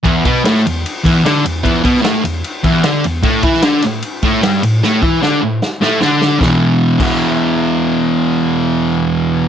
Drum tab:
CC |----------------|----------------|----------------|----------------|
RD |x-x-x-x-x-x-x-x-|x-x-x-x-x-x-x-x-|x-x-x-x-x-x-x-x-|----------------|
SD |----o-------o---|---oo-------o---|---oo-o-----o---|o---o---o-o-o-o-|
BD |o-o-------o-----|o-o-------o-----|o-o-------o-----|--o-------------|

CC |------x---------|----------------|
RD |----------------|----------------|
SD |o---------------|----------------|
BD |o-----o---------|----------------|